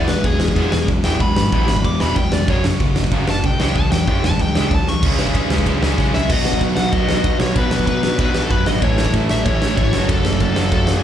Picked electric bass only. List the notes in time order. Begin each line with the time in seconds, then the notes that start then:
Already playing: E1
0.24 E1
0.56 E1
0.73 E1
0.88 E1
1.05 E1
1.21 E1
1.37 G#1
1.52 A1
1.69 G#1
1.84 E1
2.01 E1
2.16 E1
2.33 F1
2.48 F#1
2.80 F#1
3.12 F#1
3.28 F#1
3.44 C2
3.61 C#2
3.76 C#2
3.93 E2
4.08 F#2
4.24 E2
4.39 C#2
4.56 C#2
4.71 C#2
4.88 C#2
5.03 C#2
5.19 C#2
5.35 B1
5.50 C#2
5.66 C#2
5.82 C#2
5.99 C#3
6.14 C#2
6.30 B1
6.46 B1
6.61 B1
6.77 B1
6.93 B1
7.09 B1
7.24 B1
7.39 B1
7.56 B1
7.71 B1
7.87 B1
8.04 B1
8.19 B1
8.50 F#2
8.67 G#1
8.82 A1
8.98 A1
9.14 A1
9.30 A1
9.46 A1
9.62 A1
9.78 G#1
9.94 F#1
10.09 F#1
10.26 F#1
10.40 F#1
10.57 F#1
10.72 F#1